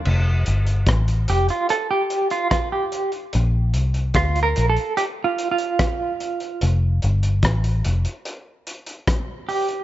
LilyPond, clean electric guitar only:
\new Staff \with { instrumentName = "Clean electric guitar" } { \time 4/4 \key f \major \tempo 4 = 73 r4. g'16 f'16 a'16 g'8 f'16 f'16 g'8 r16 | r4 \tuplet 3/2 { f'8 bes'8 a'8 g'8 f'8 f'8~ } f'4~ | f'16 r2. r16 g'8 | }